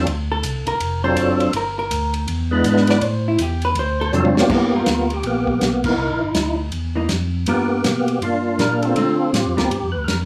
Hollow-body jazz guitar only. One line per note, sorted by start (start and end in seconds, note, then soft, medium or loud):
0.32 0.65 A4 medium
0.68 1.02 A#4 medium
1.04 1.51 C5 loud
1.57 1.78 A#4 medium
1.79 2.13 A#4 medium
2.91 3.05 D5 medium
3.05 3.26 C5 medium
3.28 3.42 E4 medium
3.42 3.63 G4 medium
3.65 3.77 B4 medium
3.79 4.00 C5 loud
4.01 4.09 A4 loud
4.51 4.72 F#3 medium
4.51 4.72 A#3 medium
4.51 4.72 E4 medium
4.51 4.72 A4 medium
4.75 5.54 G3 medium
4.75 5.54 F4 medium
4.75 5.54 A#4 medium
6.95 7.08 E3 medium
6.95 7.09 A#3 medium
6.95 7.09 D#4 medium
7.48 7.69 G3 medium
7.48 7.69 B3 medium
7.48 7.69 F4 medium
7.48 7.69 A#4 medium
8.60 8.97 G3 medium
8.60 8.97 F4 medium
8.60 8.97 A#4 medium
8.97 9.18 D3 medium
8.97 9.19 A3 medium
8.97 9.19 C4 medium
8.97 9.19 F4 medium
9.57 9.70 G3 medium
9.57 9.70 B3 medium
9.57 9.70 F4 medium
9.57 9.70 A#4 medium